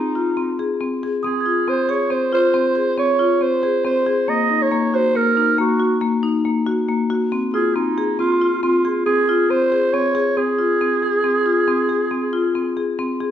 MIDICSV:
0, 0, Header, 1, 4, 480
1, 0, Start_track
1, 0, Tempo, 435098
1, 1372, Time_signature, 7, 2, 24, 8
1, 14685, End_track
2, 0, Start_track
2, 0, Title_t, "Celesta"
2, 0, Program_c, 0, 8
2, 1355, Note_on_c, 0, 87, 52
2, 1552, Note_on_c, 0, 92, 40
2, 2687, Note_off_c, 0, 87, 0
2, 2846, Note_off_c, 0, 92, 0
2, 14685, End_track
3, 0, Start_track
3, 0, Title_t, "Clarinet"
3, 0, Program_c, 1, 71
3, 0, Note_on_c, 1, 63, 71
3, 897, Note_off_c, 1, 63, 0
3, 1384, Note_on_c, 1, 68, 68
3, 1862, Note_on_c, 1, 72, 78
3, 1879, Note_off_c, 1, 68, 0
3, 2104, Note_on_c, 1, 73, 72
3, 2121, Note_off_c, 1, 72, 0
3, 2336, Note_on_c, 1, 72, 76
3, 2352, Note_off_c, 1, 73, 0
3, 2572, Note_off_c, 1, 72, 0
3, 2580, Note_on_c, 1, 72, 78
3, 3249, Note_off_c, 1, 72, 0
3, 3295, Note_on_c, 1, 73, 78
3, 3784, Note_on_c, 1, 72, 76
3, 3800, Note_off_c, 1, 73, 0
3, 4249, Note_off_c, 1, 72, 0
3, 4256, Note_on_c, 1, 72, 81
3, 4735, Note_on_c, 1, 75, 91
3, 4752, Note_off_c, 1, 72, 0
3, 5098, Note_on_c, 1, 73, 84
3, 5114, Note_off_c, 1, 75, 0
3, 5464, Note_on_c, 1, 72, 92
3, 5480, Note_off_c, 1, 73, 0
3, 5695, Note_on_c, 1, 70, 85
3, 5711, Note_off_c, 1, 72, 0
3, 6168, Note_off_c, 1, 70, 0
3, 6178, Note_on_c, 1, 66, 72
3, 6617, Note_off_c, 1, 66, 0
3, 8318, Note_on_c, 1, 68, 75
3, 8555, Note_on_c, 1, 63, 76
3, 8572, Note_off_c, 1, 68, 0
3, 9033, Note_off_c, 1, 63, 0
3, 9040, Note_on_c, 1, 65, 80
3, 9488, Note_off_c, 1, 65, 0
3, 9523, Note_on_c, 1, 65, 75
3, 9970, Note_off_c, 1, 65, 0
3, 9996, Note_on_c, 1, 68, 84
3, 10484, Note_on_c, 1, 72, 88
3, 10501, Note_off_c, 1, 68, 0
3, 10961, Note_on_c, 1, 73, 86
3, 10978, Note_off_c, 1, 72, 0
3, 11448, Note_on_c, 1, 68, 81
3, 11464, Note_off_c, 1, 73, 0
3, 14335, Note_off_c, 1, 68, 0
3, 14685, End_track
4, 0, Start_track
4, 0, Title_t, "Marimba"
4, 0, Program_c, 2, 12
4, 169, Note_on_c, 2, 65, 62
4, 326, Note_off_c, 2, 65, 0
4, 407, Note_on_c, 2, 60, 63
4, 564, Note_off_c, 2, 60, 0
4, 653, Note_on_c, 2, 68, 67
4, 808, Note_off_c, 2, 68, 0
4, 891, Note_on_c, 2, 60, 73
4, 1047, Note_off_c, 2, 60, 0
4, 1139, Note_on_c, 2, 68, 66
4, 1292, Note_off_c, 2, 68, 0
4, 1372, Note_on_c, 2, 60, 69
4, 1527, Note_off_c, 2, 60, 0
4, 1606, Note_on_c, 2, 65, 60
4, 1762, Note_off_c, 2, 65, 0
4, 1850, Note_on_c, 2, 60, 71
4, 2005, Note_off_c, 2, 60, 0
4, 2084, Note_on_c, 2, 68, 62
4, 2241, Note_off_c, 2, 68, 0
4, 2320, Note_on_c, 2, 60, 65
4, 2477, Note_off_c, 2, 60, 0
4, 2566, Note_on_c, 2, 65, 69
4, 2721, Note_off_c, 2, 65, 0
4, 2801, Note_on_c, 2, 60, 71
4, 2958, Note_off_c, 2, 60, 0
4, 3038, Note_on_c, 2, 68, 61
4, 3196, Note_off_c, 2, 68, 0
4, 3283, Note_on_c, 2, 60, 68
4, 3439, Note_off_c, 2, 60, 0
4, 3522, Note_on_c, 2, 65, 72
4, 3678, Note_off_c, 2, 65, 0
4, 3763, Note_on_c, 2, 60, 64
4, 3918, Note_off_c, 2, 60, 0
4, 4004, Note_on_c, 2, 68, 68
4, 4159, Note_off_c, 2, 68, 0
4, 4242, Note_on_c, 2, 60, 72
4, 4397, Note_off_c, 2, 60, 0
4, 4484, Note_on_c, 2, 68, 73
4, 4638, Note_off_c, 2, 68, 0
4, 4722, Note_on_c, 2, 58, 74
4, 4878, Note_off_c, 2, 58, 0
4, 4959, Note_on_c, 2, 63, 61
4, 5115, Note_off_c, 2, 63, 0
4, 5201, Note_on_c, 2, 58, 67
4, 5356, Note_off_c, 2, 58, 0
4, 5447, Note_on_c, 2, 66, 60
4, 5601, Note_off_c, 2, 66, 0
4, 5684, Note_on_c, 2, 58, 68
4, 5838, Note_off_c, 2, 58, 0
4, 5924, Note_on_c, 2, 63, 70
4, 6078, Note_off_c, 2, 63, 0
4, 6158, Note_on_c, 2, 58, 75
4, 6314, Note_off_c, 2, 58, 0
4, 6396, Note_on_c, 2, 66, 67
4, 6552, Note_off_c, 2, 66, 0
4, 6631, Note_on_c, 2, 58, 76
4, 6789, Note_off_c, 2, 58, 0
4, 6873, Note_on_c, 2, 63, 73
4, 7031, Note_off_c, 2, 63, 0
4, 7116, Note_on_c, 2, 58, 68
4, 7272, Note_off_c, 2, 58, 0
4, 7354, Note_on_c, 2, 66, 71
4, 7512, Note_off_c, 2, 66, 0
4, 7596, Note_on_c, 2, 58, 74
4, 7753, Note_off_c, 2, 58, 0
4, 7835, Note_on_c, 2, 66, 72
4, 7992, Note_off_c, 2, 66, 0
4, 8076, Note_on_c, 2, 60, 75
4, 8233, Note_off_c, 2, 60, 0
4, 8317, Note_on_c, 2, 65, 66
4, 8474, Note_off_c, 2, 65, 0
4, 8558, Note_on_c, 2, 60, 72
4, 8715, Note_off_c, 2, 60, 0
4, 8800, Note_on_c, 2, 68, 69
4, 8956, Note_off_c, 2, 68, 0
4, 9036, Note_on_c, 2, 60, 67
4, 9193, Note_off_c, 2, 60, 0
4, 9283, Note_on_c, 2, 65, 65
4, 9438, Note_off_c, 2, 65, 0
4, 9520, Note_on_c, 2, 60, 76
4, 9676, Note_off_c, 2, 60, 0
4, 9761, Note_on_c, 2, 68, 62
4, 9917, Note_off_c, 2, 68, 0
4, 9999, Note_on_c, 2, 60, 72
4, 10156, Note_off_c, 2, 60, 0
4, 10247, Note_on_c, 2, 65, 72
4, 10401, Note_off_c, 2, 65, 0
4, 10487, Note_on_c, 2, 60, 68
4, 10642, Note_off_c, 2, 60, 0
4, 10723, Note_on_c, 2, 68, 65
4, 10879, Note_off_c, 2, 68, 0
4, 10964, Note_on_c, 2, 60, 76
4, 11120, Note_off_c, 2, 60, 0
4, 11198, Note_on_c, 2, 68, 71
4, 11356, Note_off_c, 2, 68, 0
4, 11441, Note_on_c, 2, 60, 72
4, 11598, Note_off_c, 2, 60, 0
4, 11677, Note_on_c, 2, 65, 64
4, 11836, Note_off_c, 2, 65, 0
4, 11926, Note_on_c, 2, 60, 67
4, 12082, Note_off_c, 2, 60, 0
4, 12163, Note_on_c, 2, 68, 60
4, 12320, Note_off_c, 2, 68, 0
4, 12400, Note_on_c, 2, 60, 65
4, 12558, Note_off_c, 2, 60, 0
4, 12641, Note_on_c, 2, 65, 69
4, 12799, Note_off_c, 2, 65, 0
4, 12881, Note_on_c, 2, 60, 77
4, 13039, Note_off_c, 2, 60, 0
4, 13117, Note_on_c, 2, 68, 60
4, 13277, Note_off_c, 2, 68, 0
4, 13359, Note_on_c, 2, 60, 68
4, 13518, Note_off_c, 2, 60, 0
4, 13603, Note_on_c, 2, 65, 68
4, 13761, Note_off_c, 2, 65, 0
4, 13847, Note_on_c, 2, 60, 62
4, 14004, Note_off_c, 2, 60, 0
4, 14085, Note_on_c, 2, 68, 61
4, 14243, Note_off_c, 2, 68, 0
4, 14328, Note_on_c, 2, 60, 70
4, 14485, Note_off_c, 2, 60, 0
4, 14567, Note_on_c, 2, 68, 67
4, 14685, Note_off_c, 2, 68, 0
4, 14685, End_track
0, 0, End_of_file